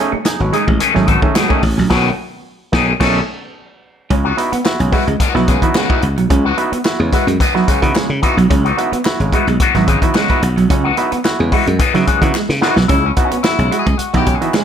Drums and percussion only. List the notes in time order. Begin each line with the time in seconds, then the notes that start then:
0.25 snare, clap, closed hi-hat
0.53 closed hi-hat
0.68 kick
0.80 closed hi-hat
0.95 snare
1.08 kick, closed hi-hat
1.22 kick
1.36 snare, clap, closed hi-hat
1.50 kick
1.63 kick, open hi-hat
1.77 snare
1.90 kick, snare, crash
2.73 kick, snare
3.01 kick, snare, crash
4.11 kick, closed hi-hat
4.38 closed hi-hat
4.53 closed hi-hat
4.65 snare, clap
4.80 closed hi-hat
4.92 kick, open hi-hat
5.08 closed hi-hat
5.20 kick, closed hi-hat
5.35 snare
5.48 kick, closed hi-hat
5.62 kick, closed hi-hat
5.75 snare, clap
5.90 kick
6.02 closed hi-hat
6.18 closed hi-hat
6.30 kick, closed hi-hat
6.58 closed hi-hat
6.73 closed hi-hat
6.85 snare, clap
7.13 kick, closed hi-hat
7.28 closed hi-hat
7.40 kick, closed hi-hat
7.56 snare
7.68 kick, closed hi-hat
7.82 kick, closed hi-hat
7.95 snare, clap
8.23 kick, closed hi-hat
8.38 closed hi-hat
8.51 kick, closed hi-hat
8.66 closed hi-hat
8.78 closed hi-hat
8.93 closed hi-hat
9.05 snare, clap
9.20 closed hi-hat
9.32 kick, closed hi-hat
9.48 closed hi-hat
9.60 kick, closed hi-hat
9.75 snare, closed hi-hat
9.88 kick, closed hi-hat
10.02 kick, closed hi-hat
10.15 snare, clap
10.30 kick, closed hi-hat
10.43 closed hi-hat
10.58 closed hi-hat
10.70 kick, closed hi-hat
10.97 closed hi-hat
11.12 closed hi-hat
11.25 snare, clap
11.52 kick, open hi-hat
11.67 closed hi-hat
11.79 kick, closed hi-hat
11.95 snare, closed hi-hat
12.07 kick, closed hi-hat
12.22 kick, closed hi-hat
12.35 snare, clap
12.49 snare
12.62 snare
12.76 snare
12.89 kick, closed hi-hat
13.16 kick, closed hi-hat
13.31 closed hi-hat
13.44 snare, clap
13.59 closed hi-hat
13.72 closed hi-hat
13.86 kick, closed hi-hat
13.99 closed hi-hat
14.14 kick, snare, closed hi-hat
14.26 kick, closed hi-hat
14.42 closed hi-hat
14.54 snare, clap